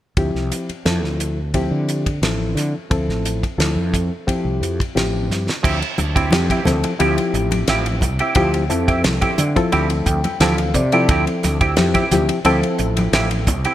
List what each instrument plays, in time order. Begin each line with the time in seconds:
0.17 fretless electric bass D2, reed electric piano F3 C4 E4 G4, kick, ride
0.35 fretless electric bass C2, snare
0.52 hi-hat pedal, ride
0.69 muted fretless electric bass stroke, ride
0.85 fretless electric bass F2, reed electric piano F3 C4 E4 A4, snare, ride
1.03 fretless electric bass D2, snare
1.20 hi-hat pedal, ride
1.54 reed electric piano F3 C4 E4 G4, kick, ride
1.71 fretless electric bass D3
1.89 hi-hat pedal, ride
2.06 kick, ride
2.22 fretless electric bass A1, reed electric piano F3 C4 E4 A4, snare, ride
2.55 fretless electric bass D3, snare, hi-hat pedal, ride
2.90 fretless electric bass D2, reed electric piano F3 C4 E4 A4, kick, ride
3.08 fretless electric bass A1, snare
3.25 hi-hat pedal, ride
3.43 kick, ride
3.58 fretless electric bass D2, reed electric piano F3 C4 E4 A4, snare, ride
3.76 fretless electric bass F2
3.94 kick, hi-hat pedal, ride
4.27 reed electric piano F3 C4 E4 G4, kick, ride
4.45 fretless electric bass C2
4.61 fretless electric bass F2, hi-hat pedal, ride
4.80 kick, ride
4.95 fretless electric bass A1, reed electric piano F3 C4 E4 G4, snare, ride
5.29 fretless electric bass G2, snare, hi-hat pedal
5.49 snare
5.63 fretless electric bass D2, clean electric guitar F3 C4 E4 G4, kick, crash
5.81 muted clean electric guitar stroke, ride
5.98 fretless electric bass D2, muted clean electric guitar stroke, hi-hat pedal, high conga
6.15 clean electric guitar C4 E4 G4, kick, ride
6.31 fretless electric bass F2, reed electric piano F3 C4 E4 G4, muted clean electric guitar stroke, snare, ride, high conga
6.50 clean electric guitar C4 E4 G4, kick, ride
6.65 fretless electric bass D2, reed electric piano F3 C4 E4 A4, snare, hi-hat pedal, high conga, low conga
6.84 muted clean electric guitar stroke, ride
6.99 fretless electric bass D2, reed electric piano F3 C4 E4 G4, clean electric guitar F3 C4 E4 G4, ride
7.18 muted clean electric guitar stroke, ride
7.33 fretless electric bass A1, muted clean electric guitar stroke, hi-hat pedal
7.51 ride, high conga
7.68 fretless electric bass A1, clean electric guitar F3 C4 E4 G4, snare, ride
7.86 muted clean electric guitar stroke, ride
8.01 fretless electric bass C2, muted clean electric guitar stroke, kick, hi-hat pedal, low conga
8.19 clean electric guitar C4 E4 G4, ride
8.35 fretless electric bass D2, clean electric guitar F3 C4 E4 G4, reed electric piano F3 C4 E4 G4, kick, ride
8.54 muted clean electric guitar stroke, ride
8.70 fretless electric bass F2, reed electric piano F3 C4 E4 A4, muted clean electric guitar stroke, hi-hat pedal
8.88 clean electric guitar C4 E4 G4, kick, ride
9.04 fretless electric bass C2, muted clean electric guitar stroke, snare, ride, high conga
9.21 clean electric guitar C4 E4 G4, kick, ride
9.38 fretless electric bass D3, hi-hat pedal, high conga
9.56 reed electric piano F3 C4 E4 A4, muted clean electric guitar stroke, kick, ride
9.72 fretless electric bass D2, clean electric guitar F3 C4 E4 G4, ride
9.90 muted clean electric guitar stroke, ride
10.06 fretless electric bass D2, reed electric piano G5, muted clean electric guitar stroke, kick, hi-hat pedal
10.24 ride, high conga
10.40 fretless electric bass D2, reed electric piano E3 F3 C4 A4 F5, clean electric guitar F3 C4 E4 G4, snare, ride
10.58 muted clean electric guitar stroke, ride
10.74 fretless electric bass C3, reed electric piano D5, muted clean electric guitar stroke, kick, hi-hat pedal, low conga
10.92 reed electric piano F3 C4 E4 A4, clean electric guitar C4 E4 G4, ride
11.09 fretless electric bass D2, clean electric guitar F3 C4 E4 G4, kick, ride
11.27 muted clean electric guitar stroke, ride
11.43 fretless electric bass D2, muted clean electric guitar stroke, snare, hi-hat pedal, high conga
11.61 clean electric guitar C4 E4 G4, kick, ride
11.77 fretless electric bass F2, reed electric piano F3 C4 E4 G4, muted clean electric guitar stroke, snare, ride, high conga
11.94 clean electric guitar C4 E4 G4, kick, ride
12.11 fretless electric bass D2, reed electric piano F3 C4 E4 G4, snare, hi-hat pedal, high conga, low conga
12.29 muted clean electric guitar stroke, ride
12.45 fretless electric bass D2, clean electric guitar F3 C4 E4 G4, reed electric piano F3 C4 E4 A4, ride
12.63 muted clean electric guitar stroke, ride
12.78 fretless electric bass A1, muted clean electric guitar stroke, hi-hat pedal
12.97 ride, high conga
13.12 fretless electric bass A1, clean electric guitar F3 C4 E4 G4, snare, ride
13.31 muted clean electric guitar stroke, ride
13.47 fretless electric bass C2, muted clean electric guitar stroke, kick, hi-hat pedal, low conga
13.65 clean electric guitar C4 E4 G4, ride